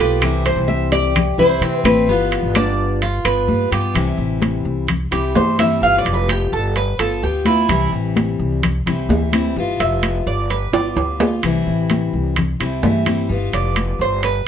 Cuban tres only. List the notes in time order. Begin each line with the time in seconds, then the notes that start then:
0.00 G4
0.46 C5
0.92 G4
1.39 E4
1.63 C4
2.09 B3
2.56 D4
3.02 F4
3.25 B4
3.72 G4
5.12 G4
5.36 C5
5.59 E5
5.83 F5
5.98 D5
6.14 B4
6.30 G4
6.53 A4
6.76 B4
6.99 A4
7.23 G4
7.46 E4
9.80 E5
10.27 D5
10.50 B4
10.73 D5
13.54 D5
14.01 C5
14.24 B4